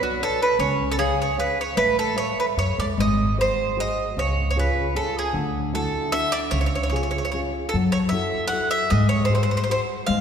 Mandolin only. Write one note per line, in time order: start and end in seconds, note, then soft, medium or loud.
0.03 0.20 F#4 medium
0.23 0.41 A4 medium
0.42 0.59 B4 medium
0.60 0.90 C#5 medium
0.92 0.95 A4 medium
0.99 1.18 G#4 medium
1.22 1.38 C#5 medium
1.40 1.58 B4 medium
1.61 1.77 C#5 medium
1.77 1.96 B4 medium
1.99 2.16 A4 medium
2.18 2.39 C#5 medium
2.40 2.45 B4 medium
2.59 2.78 C#5 medium
2.80 2.85 D5 medium
3.00 3.37 D#5 medium
3.41 3.77 C5 medium
3.80 4.16 D#5 medium
4.19 4.49 C#5 medium
4.51 4.57 C#5 medium
4.59 4.94 B4 medium
4.96 5.15 A4 medium
5.19 5.35 G#4 medium
5.75 6.15 A4 medium
6.12 6.34 E5 medium
6.32 6.37 D5 medium
6.51 6.59 C#5 medium
6.61 6.65 C#5 medium
6.66 6.74 C#5 medium
6.75 6.82 C#5 medium
6.83 6.88 C#5 medium
6.89 6.95 C#5 soft
6.96 7.02 C#5 medium
7.03 7.10 C#5 soft
7.11 7.17 C#5 medium
7.18 7.24 C#5 soft
7.25 7.30 C#5 medium
7.32 7.40 C#5 medium
7.69 7.75 A4 medium
7.92 7.97 C#5 medium
8.09 8.47 E5 medium
8.47 8.69 F#5 loud
8.71 8.89 E5 medium
8.90 9.08 D#5 medium
9.09 9.25 C#5 medium
9.25 9.34 C5 medium
9.35 9.42 C5 medium
9.43 9.50 C5 medium
9.51 9.56 C5 medium
9.57 9.62 C5 medium
9.64 9.70 C5 medium
9.71 9.79 C5 medium
10.06 10.21 F5 medium